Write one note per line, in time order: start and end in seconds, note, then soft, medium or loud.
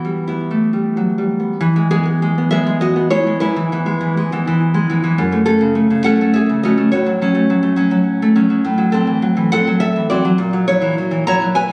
0.00 1.57 E3 soft
0.00 0.28 B3 soft
0.00 0.25 F#4 medium
0.05 0.72 G3 soft
0.28 1.29 B3 soft
0.28 0.93 E4 soft
0.51 1.50 A3 soft
0.73 1.17 G3 soft
0.97 1.60 F#3 soft
1.18 1.61 G3 soft
1.40 1.61 B3 soft
1.61 3.36 E3 medium
1.76 1.90 G#3 soft
1.91 2.21 G#3 soft
1.91 2.04 B3 medium
1.91 2.48 G#4 medium
2.06 2.37 B3 soft
2.22 2.51 G#3 soft
2.38 2.51 B3 soft
2.51 2.65 G#3 medium
2.51 2.95 B3 medium
2.51 2.79 G#4 medium
2.51 2.79 E5 medium
2.67 3.10 G#3 medium
2.81 3.09 F#4 medium
2.81 3.10 D#5 medium
2.96 3.10 B3 medium
3.10 3.25 G#3 soft
3.10 3.38 B3 soft
3.10 3.39 E4 medium
3.10 3.39 C#5 medium
3.27 3.41 G#3 soft
3.40 5.15 G#2 medium
3.40 4.87 E4 medium
3.40 4.86 B4 medium
3.56 3.71 E3 medium
3.72 3.99 E3 medium
3.72 4.31 B3 medium
3.86 4.16 G#3 soft
4.01 4.31 E3 medium
4.17 4.73 G#3 soft
4.32 4.46 E3 medium
4.32 4.90 B3 medium
4.47 4.88 E3 medium
4.74 5.18 G#3 medium
4.90 5.02 E3 soft
4.90 5.17 B3 soft
5.04 5.19 E3 medium
5.18 6.49 F#2 medium
5.32 5.45 A3 medium
5.46 5.74 A3 soft
5.46 6.02 C#4 medium
5.46 6.03 A4 medium
5.61 5.89 C#3 medium
5.75 6.04 A3 medium
5.90 6.05 C#3 medium
6.04 6.20 A3 medium
6.04 6.63 C#4 medium
6.04 6.33 A4 medium
6.04 6.33 F#5 loud
6.21 6.63 A3 medium
6.34 6.62 G#4 medium
6.34 6.62 E5 medium
6.49 6.92 C#3 medium
6.63 6.76 A3 medium
6.63 6.90 C#4 medium
6.63 6.91 F#4 medium
6.63 6.91 D#5 medium
6.78 6.92 A3 medium
6.92 8.22 A2 medium
6.92 8.32 F#4 medium
6.92 8.31 C#5 loud
7.06 7.21 F#3 medium
7.21 7.34 F#3 medium
7.21 7.76 C#4 medium
7.35 7.50 A3 medium
7.50 7.62 F#3 medium
7.63 7.76 A3 medium
7.76 7.90 F#3 medium
7.76 8.35 C#4 medium
7.91 8.34 F#3 medium
8.22 8.64 A3 medium
8.35 8.49 F#3 medium
8.35 8.62 C#4 medium
8.50 8.64 F#3 medium
8.65 10.10 A2 medium
8.78 8.92 F#3 medium
8.92 9.07 F#3 medium
8.92 9.48 C4 medium
8.92 9.49 A4 loud
9.07 9.22 E3 medium
9.22 9.36 F#3 medium
9.37 9.52 E3 medium
9.52 9.66 F#3 medium
9.52 10.10 C4 medium
9.52 9.80 A4 loud
9.52 9.80 F#5 loud
9.67 9.95 F#3 medium
9.80 10.08 A4 medium
9.80 10.08 E5 loud
9.96 10.38 E3 medium
10.10 10.24 F#3 medium
10.10 10.36 C4 medium
10.10 10.37 F#4 medium
10.10 10.38 D5 loud
10.25 10.39 F#3 medium
10.38 11.71 A#2 medium
10.53 10.67 F#3 medium
10.68 10.97 F#3 medium
10.68 11.23 E4 medium
10.68 11.24 C#5 loud
10.82 10.98 E3 medium
10.98 11.26 F#3 medium
11.11 11.26 E3 medium
11.27 11.41 F#3 medium
11.27 11.72 E4 medium
11.27 11.54 C#5 loud
11.27 11.55 A#5 loud
11.42 11.72 F#3 medium
11.55 11.72 B4 medium
11.55 11.72 G#5 loud